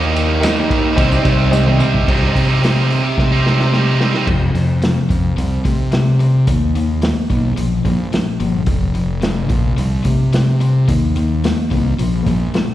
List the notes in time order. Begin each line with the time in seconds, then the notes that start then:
Already playing: D#2 D#3 G3 A#3 D#4 G4 A#4 D#5
0.03 tambourine
0.16 ride, tambourine
0.40 D#3 G3 A#3 G4 A#4 D#5, ride
0.44 D#4, snare, tambourine
0.58 tambourine
0.70 kick, ride
0.95 C2 C3 G3 C4 G4 C5 D#5, kick, ride, tambourine
1.00 D#4
1.12 tambourine
1.25 C2, kick, ride, tambourine
1.39 tambourine
1.51 G4 C5 D#5, high tom, tambourine
1.67 mid tom
1.79 C3 G3 C4 D#4, mid tom, tambourine
1.94 C2, kick
2.08 C2 C3 G3 C4 D#4 G4, kick, crash
2.35 C3 G3 C4 D#4 G4, kick, open hi-hat
2.48 G3 C4 D#4
2.62 C3 G3 C4 D#4 G4, snare, open hi-hat
2.75 C4 D#4 G4
2.90 muted overdriven electric guitar stroke, open hi-hat
3.03 C4 D#4 G4, muted distorted electric guitar stroke
3.18 C3, kick, snare
3.31 C4 D#4 G4
3.35 G3
3.42 C3 G3 C4 D#4 G4, snare
3.47 G3 C4 D#4
3.57 C4 D#4 G4, muted distorted electric guitar stroke, snare
3.71 C3 G3 C4 D#4 G4, snare
3.86 C4 D#4 G4
3.98 C3 G3 C4 D#4 G4, snare
4.03 G3 C4
4.14 G3 C4 D#4, snare
4.27 F2 C3, kick, crash
4.54 F2 C3, open hi-hat
4.82 F2 C3, snare, open hi-hat
5.09 F2 C3, kick, open hi-hat
5.36 C2 C3 G3, open hi-hat
5.64 C3 A3, kick, open hi-hat
5.92 C3 G3, snare, open hi-hat
6.19 C3 G3, open hi-hat
6.47 D#2 D#3 A#3, kick, open hi-hat
6.75 D#3 A#3, open hi-hat
7.02 D#3 A#3, snare, open hi-hat
7.30 B1 D#3 A#3, kick, open hi-hat
7.57 A#1 A#2 F3, open hi-hat
7.85 A#1 A#2 G3, kick, open hi-hat
8.12 A#2 F3, snare, open hi-hat
8.40 G1 A#2 F3, open hi-hat
8.66 F1 F2 C3, kick, open hi-hat
8.94 F1 F2 C3, open hi-hat
9.21 F2 C3, snare, open hi-hat
9.49 A#1 F2 C3, kick, open hi-hat
9.77 C2 C3 G3, open hi-hat
10.03 C3 A3, kick, open hi-hat
10.33 C3 G3, snare, open hi-hat
10.60 C3 G3, open hi-hat
10.88 D#2 D#3 A#3, kick, open hi-hat
11.16 D#3 A#3, open hi-hat
11.44 D#3 A#3, snare, open hi-hat
11.70 C2 D#3 A#3, kick, open hi-hat
11.99 A#1 A#2 F3, open hi-hat
12.26 A#1 A#2 G3, kick, open hi-hat
12.54 A#2 F3, snare, open hi-hat